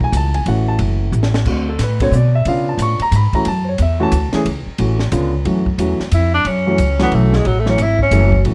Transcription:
0.00 0.12 B1 medium
0.00 0.40 E3 medium
0.00 0.40 A3 medium
0.00 0.40 C#4 medium
0.00 0.40 F#4 medium
0.00 0.14 G#5 loud
0.00 kick medium
0.12 0.45 C#2 loud
0.12 hi-hat pedal medium
0.12 ride medium
0.17 0.35 A5 medium
0.34 0.46 G#5 medium
0.34 ride soft
0.46 0.78 A1 medium
0.46 1.39 E3 medium
0.46 1.39 A3 medium
0.46 1.39 C#4 medium
0.46 1.39 F#4 medium
0.46 0.68 F#5 medium
0.46 ride medium
0.68 0.75 A5 medium
0.79 1.11 F#1 medium
0.79 ride medium
1.12 1.45 A1 loud
1.12 hi-hat pedal medium
1.23 snare medium
1.34 snare medium
1.45 1.78 D2 medium
1.45 1.65 D3 medium
1.45 1.66 A3 medium
1.45 1.66 C4 medium
1.45 1.66 F#4 medium
1.45 kick medium
1.45 crash medium
1.69 1.80 A4 medium
1.79 2.11 A2 medium
1.79 snare soft
1.79 hi-hat pedal soft
1.79 ride medium
1.84 2.02 B4 medium
2.00 2.12 D3 medium
2.00 2.12 A3 medium
2.00 2.12 C4 medium
2.00 2.12 F#4 medium
2.00 2.13 C#5 loud
2.00 kick medium
2.00 ride medium
2.11 2.44 B2 loud
2.11 hi-hat pedal medium
2.16 2.35 D5 medium
2.35 2.46 E5 medium
2.45 2.77 C#3 medium
2.45 2.97 B3 medium
2.45 2.97 C#4 medium
2.45 2.96 D4 medium
2.45 2.97 F4 medium
2.45 2.68 F5 medium
2.45 ride medium
2.69 2.80 A5 medium
2.77 2.98 A2 medium
2.77 hi-hat pedal medium
2.77 ride medium
2.82 3.01 C#6 loud
2.99 3.13 A#5 loud
2.99 muted upright bass stroke soft
2.99 ride medium
3.11 3.31 G#2 loud
3.11 hi-hat pedal medium
3.11 ride medium
3.16 3.35 B5 loud
3.33 3.45 E3 medium
3.33 3.45 A3 medium
3.33 3.45 C#4 medium
3.33 3.45 F#4 medium
3.33 3.46 A#5 loud
3.33 muted upright bass stroke soft
3.33 kick medium
3.33 ride soft
3.45 3.78 F#2 medium
3.45 3.67 A5 medium
3.45 ride medium
3.64 3.66 C5 medium
3.69 3.80 C#5 medium
3.78 4.11 E2 medium
3.78 hi-hat pedal medium
3.78 ride medium
3.82 4.01 E5 medium
4.00 4.11 E3 medium
4.00 4.11 A3 medium
4.00 4.11 C#4 medium
4.00 4.11 F#4 loud
4.00 4.32 A5 loud
4.12 4.31 D2 loud
4.12 hi-hat pedal medium
4.12 ride medium
4.33 4.44 E3 medium
4.33 4.44 A3 medium
4.33 4.45 C#4 medium
4.33 4.45 G#4 medium
4.33 muted upright bass stroke soft
4.33 snare medium
4.33 ride soft
4.45 4.65 C#2 medium
4.45 ride medium
4.66 muted upright bass stroke soft
4.78 5.11 A1 medium
4.78 4.98 E3 medium
4.78 4.98 A3 medium
4.78 4.98 C#4 medium
4.78 4.98 F#4 medium
4.78 ride medium
4.99 snare soft
5.12 5.44 C#2 loud
5.12 5.31 D3 medium
5.12 5.31 B3 medium
5.12 5.31 C#4 medium
5.12 5.31 F4 medium
5.12 hi-hat pedal medium
5.12 ride medium
5.45 5.77 F#2 medium
5.45 5.64 E3 medium
5.45 5.64 F#3 medium
5.45 5.64 A3 medium
5.45 5.64 C#4 medium
5.45 5.64 F#4 medium
5.45 ride medium
5.66 kick soft
5.78 5.98 E2 medium
5.78 5.98 E3 medium
5.78 5.98 F#3 medium
5.78 5.98 A3 medium
5.78 5.98 C#4 medium
5.78 5.98 F#4 medium
5.78 hi-hat pedal soft
5.78 ride medium
5.99 muted upright bass stroke soft
5.99 snare soft
6.11 6.44 F2 medium
6.11 6.33 E4 medium
6.11 hi-hat pedal medium
6.11 ride medium
6.34 6.49 D4 medium
6.45 6.77 F#2 medium
6.45 7.01 C#4 medium
6.45 ride medium
6.66 6.77 E3 medium
6.66 6.77 F#3 medium
6.66 6.77 A3 medium
6.66 6.77 C#4 medium
6.66 6.77 F#4 medium
6.78 7.11 C#2 medium
6.78 hi-hat pedal medium
6.78 ride medium
6.99 7.42 E3 medium
6.99 7.42 F#3 medium
6.99 7.42 A3 medium
6.99 7.17 B3 medium
6.99 7.42 C#4 medium
6.99 7.42 F#4 medium
6.99 snare medium
6.99 ride soft
7.12 7.44 B1 medium
7.12 7.37 A3 medium
7.12 ride medium
7.33 7.49 G#3 medium
7.33 snare soft
7.45 7.77 A1 medium
7.45 7.61 F#3 medium
7.45 ride medium
7.59 7.72 A3 medium
7.66 7.77 E3 medium
7.66 7.77 F#3 medium
7.66 7.77 A3 medium
7.66 7.77 C#4 medium
7.66 7.77 F#4 medium
7.66 snare soft
7.70 7.84 C#4 medium
7.78 8.10 G#1 medium
7.78 hi-hat pedal soft
7.78 ride medium
7.82 8.01 E4 medium
7.99 8.43 C#4 medium
7.99 kick medium
8.11 8.43 F#1 medium
8.11 8.31 E3 medium
8.11 8.31 F#3 medium
8.11 8.31 A3 medium
8.11 8.31 C#4 medium
8.11 8.31 A4 medium
8.11 hi-hat pedal medium
8.11 ride medium
8.32 kick medium
8.44 8.54 A1 medium
8.44 8.54 E3 medium
8.44 8.54 F#3 medium
8.44 8.54 A3 medium
8.44 8.54 C#4 medium
8.44 8.54 F#4 medium
8.44 ride medium

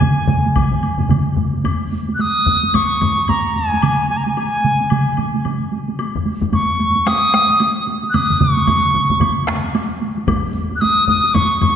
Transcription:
0.00 1.10 G#5 medium
0.00 taiko low-mid medium
0.00 taiko mid loud
0.00 taiko high medium
0.00 high woodblock soft
0.27 taiko low-mid loud
0.27 taiko mid medium
0.27 taiko high soft
0.46 taiko high soft
0.55 taiko medium
0.55 taiko low-mid medium
0.55 taiko mid medium
0.55 taiko high medium
0.55 high woodblock soft
0.72 taiko low-mid medium
0.72 taiko mid medium
0.83 taiko high soft
0.83 high woodblock soft
0.98 taiko low-mid medium
0.98 taiko mid medium
0.98 taiko high soft
1.09 taiko low-mid medium
1.09 taiko mid loud
1.09 taiko high medium
1.09 high woodblock soft
1.37 taiko low-mid medium
1.37 taiko mid medium
1.37 taiko high soft
1.54 taiko high soft
1.64 taiko low-mid medium
1.64 taiko high medium
1.64 high woodblock soft
1.92 taiko high soft
2.08 taiko high soft
2.15 2.22 F#6 medium
2.19 2.77 D#6 medium
2.19 taiko high medium
2.19 high woodblock soft
2.47 taiko low-mid medium
2.47 taiko high soft
2.63 taiko high soft
2.74 3.31 C#6 medium
2.74 taiko low-mid medium
2.74 taiko high medium
2.74 high woodblock soft
3.01 taiko low-mid medium
3.01 taiko high soft
3.01 high woodblock soft
3.18 taiko high soft
3.28 3.58 A#5 medium
3.28 taiko low-mid medium
3.28 taiko high medium
3.28 high woodblock soft
3.56 4.09 G#5 medium
3.56 taiko high soft
3.72 taiko high soft
3.82 taiko mid medium
3.82 taiko high medium
3.82 high woodblock soft
4.10 4.19 G#5 medium
4.10 taiko high soft
4.17 4.25 A#5 medium
4.24 5.18 G#5 medium
4.24 taiko high soft
4.37 taiko high medium
4.37 high woodblock soft
4.64 taiko mid medium
4.64 taiko high soft
4.80 taiko high soft
4.90 taiko mid medium
4.90 taiko high medium
4.90 high woodblock soft
5.17 taiko mid medium
5.17 taiko high soft
5.17 high woodblock soft
5.34 taiko high soft
5.45 taiko mid medium
5.45 taiko high medium
5.45 high woodblock soft
5.72 taiko high soft
5.88 taiko high soft
5.99 taiko high medium
5.99 high woodblock soft
6.15 taiko low-mid medium
6.26 taiko high soft
6.42 taiko low-mid medium
6.42 taiko high soft
6.52 7.08 C#6 medium
6.52 taiko low-mid medium
6.52 taiko high medium
6.52 high woodblock soft
6.79 taiko high medium
6.96 taiko high soft
7.06 7.88 D#6 medium
7.06 taiko rim medium
7.06 taiko high medium
7.06 high woodblock soft
7.33 taiko rim medium
7.33 taiko high medium
7.33 high woodblock soft
7.50 taiko high soft
7.60 taiko high medium
7.60 high woodblock soft
7.87 taiko high medium
8.03 taiko high soft
8.10 8.16 F#6 medium
8.14 8.42 D#6 medium
8.14 taiko low-mid medium
8.14 taiko mid medium
8.14 taiko high medium
8.14 high woodblock medium
8.30 taiko low-mid medium
8.30 taiko mid medium
8.40 9.48 C#6 medium
8.40 taiko low-mid medium
8.40 taiko mid medium
8.40 taiko high medium
8.57 taiko high soft
8.67 taiko low-mid medium
8.67 taiko mid medium
8.67 taiko high medium
8.67 high woodblock soft
8.94 taiko low-mid medium
8.94 taiko mid medium
8.94 taiko high medium
9.10 taiko low-mid medium
9.10 taiko mid medium
9.10 taiko high medium
9.20 taiko low-mid medium
9.20 taiko mid medium
9.20 taiko high medium
9.20 high woodblock soft
9.47 taiko rim medium
9.47 taiko high soft
9.64 taiko high soft
9.75 taiko high medium
9.75 high woodblock soft
10.01 taiko high medium
10.17 taiko high soft
10.28 taiko loud
10.28 taiko low-mid medium
10.28 taiko high medium
10.28 high woodblock medium
10.55 taiko high soft
10.71 taiko high soft
10.76 10.82 F#6 medium
10.81 11.07 D#6 medium
10.81 taiko high medium
10.81 high woodblock soft
11.08 11.36 D#6 medium
11.08 taiko low-mid medium
11.08 taiko high medium
11.24 taiko high soft
11.34 11.60 C#6 medium
11.34 taiko low-mid loud
11.34 taiko high medium
11.34 high woodblock soft
11.61 11.76 C#6 medium
11.61 taiko low-mid loud
11.61 taiko high medium
11.61 high woodblock soft

